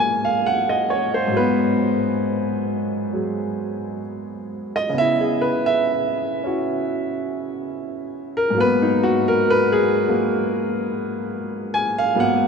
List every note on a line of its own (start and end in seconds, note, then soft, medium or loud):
0.00 1.26 G#2 soft
0.00 1.30 F#3 soft
0.00 1.33 G#3 soft
0.00 1.34 A#3 medium
0.00 1.35 B3 medium
0.00 0.20 G#5 medium
0.25 0.40 F5 medium
0.46 0.74 F#5 medium
0.69 1.01 D#5 medium
0.90 1.11 C#5 medium
1.14 1.30 C5 medium
1.27 4.91 G#2 medium
1.27 3.12 F#3 soft
1.37 4.92 B3 medium
1.37 4.02 B4 medium
3.13 4.94 F#3 soft
3.13 4.94 G#3 soft
4.76 4.91 D#5 medium
4.89 8.53 C#3 soft
4.89 8.55 B3 soft
4.98 6.44 E4 medium
4.98 5.26 E5 medium
5.20 5.53 G#4 medium
5.41 5.62 B4 medium
5.66 6.55 E5 medium
6.44 8.55 C#4 soft
6.44 8.56 E4 soft
6.44 8.56 F#4 soft
8.37 8.53 A#4 medium
8.50 12.14 G#2 soft
8.50 10.05 F#3 soft
8.58 10.08 A#3 soft
8.58 12.15 B3 medium
8.58 8.88 B4 loud
8.82 9.15 D#4 medium
9.03 9.24 F#4 medium
9.28 9.43 A#4 medium
9.50 9.78 B4 medium
9.72 9.92 G#4 medium
10.07 12.14 F#3 soft
10.07 12.17 G#3 soft
10.07 12.15 A#3 soft
11.74 11.95 G#5 medium
11.98 12.14 F5 medium
12.15 12.48 G#2 soft
12.15 12.48 F#3 soft
12.15 12.48 A#3 soft
12.15 12.48 B3 medium
12.20 12.48 F#5 medium